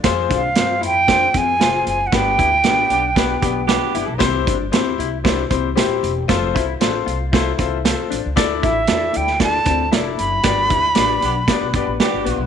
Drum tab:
HH |x-x-x-x-x-x-x-x-|x-x-x-x-x-x-x-x-|x-x-x-x-x-x-x-x-|x-x-x-x-x-x-x-x-|
SD |o---o---o---o---|o---o---o---o---|o---o---o---o---|o---o---o---o---|
BD |o-o-----o-o-----|o-o-----o-o-----|o-o-----o-o-----|o-o-----o-o-----|

HH |x-x-x-x-x-x-x-x-|x-x-x-x-x-x-x-x-|
SD |o---o--oo---o---|o---o---o---o---|
BD |o-o-----o-o-----|o-o-----o-o-----|